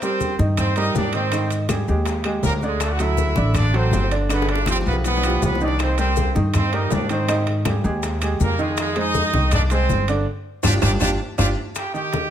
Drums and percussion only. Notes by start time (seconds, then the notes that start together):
0.02 high bongo, high conga, high timbale, maracas
0.20 high bongo, high conga, maracas
0.39 high conga, maracas
0.57 high bongo, high conga, low conga, high timbale, claves, maracas
0.76 high bongo, high conga, high timbale, maracas
0.95 high bongo, low bongo, high conga, low timbale, maracas
1.13 high bongo, high conga, high timbale, maracas
1.31 high bongo, high conga, high timbale, claves, maracas
1.50 high bongo, high conga, high timbale, maracas
1.69 high bongo, high conga, high timbale, claves, maracas
1.88 high conga, maracas
2.05 high bongo, high conga, high timbale, maracas
2.24 high bongo, high conga, high timbale, claves
2.43 high bongo, low bongo, high conga, low timbale, maracas
2.61 high bongo, high conga, maracas
2.80 high bongo, high conga, high timbale, claves, maracas
2.99 high bongo, high conga, high timbale, maracas
3.17 high bongo, high conga, maracas
3.36 high conga, maracas
3.54 high bongo, high conga, low conga, high timbale, claves, maracas
3.73 high bongo, high conga, high timbale
3.91 high bongo, low bongo, high conga, low timbale, maracas
4.09 high bongo, high conga, high timbale, maracas
4.29 high bongo, high conga, high timbale, claves, maracas
4.42 high bongo
4.47 high conga, high timbale
4.55 high bongo
4.66 low bongo, high conga, high timbale, claves, maracas
4.81 low bongo
4.86 high conga, maracas
4.93 high bongo
5.04 low bongo, high conga, high timbale, maracas
5.17 low bongo
5.23 high conga, high timbale, claves, maracas
5.30 low bongo
5.42 low bongo, high conga, low timbale, maracas
5.55 low bongo
5.61 high conga, maracas
5.68 low bongo
5.79 high bongo, high conga, high timbale, claves, maracas
5.98 high bongo, high conga, high timbale, maracas
6.16 high bongo, high conga, maracas
6.36 high conga, maracas
6.54 high bongo, high conga, low conga, high timbale, claves, maracas
6.73 high bongo, high conga, high timbale
6.90 high bongo, low bongo, high conga, low timbale, maracas
7.09 high bongo, high conga, high timbale, maracas
7.29 high bongo, high conga, high timbale, claves, maracas
7.47 high bongo, high conga, high timbale
7.65 high bongo, high conga, high timbale, claves, maracas
7.85 high conga, maracas
8.03 high bongo, high conga, high timbale, maracas
8.22 high bongo, high conga, high timbale, claves, maracas
8.40 high bongo, low bongo, high conga, maracas
8.59 high bongo, high conga, maracas
8.77 high bongo, high conga, high timbale, claves, maracas
8.96 high bongo, high conga, high timbale
9.14 high bongo, high conga, maracas
9.33 high conga, maracas
9.51 high bongo, high conga, low conga, high timbale, claves, maracas
9.70 high bongo, high conga, high timbale, maracas
9.89 high bongo, low bongo, high conga, maracas
10.08 high bongo, high conga, high timbale, maracas
10.63 low bongo, low conga, high timbale, claves, maracas
10.82 low bongo, low conga, high timbale, claves, maracas
11.00 low bongo, low conga, high timbale, claves, maracas
11.38 low bongo, low conga, high timbale, claves, maracas
11.75 high bongo, high conga, high timbale, claves, maracas
11.95 high conga, maracas
12.13 high bongo, high conga, high timbale, low timbale, maracas